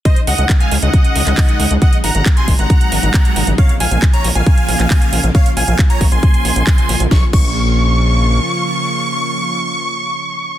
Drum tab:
CC |----------------|----------------|----------------|----------------|
HH |xxoxxxoxxxoxoxox|xxoxxxoxxxoxxxox|xxoxxxoxxxoxoxox|xxoxxxoxxxoxxxox|
CP |----x------xx---|----x-------x---|----x------xx---|----x-------x---|
SD |----------------|----------------|----------------|----------------|
BD |o---o---o---o---|o---o-o-o---o---|o---o---o---o---|o---o-o-o---o---|

CC |--x-------------|----------------|
HH |----------------|----------------|
CP |----------------|----------------|
SD |o---------------|----------------|
BD |o-o-------------|----------------|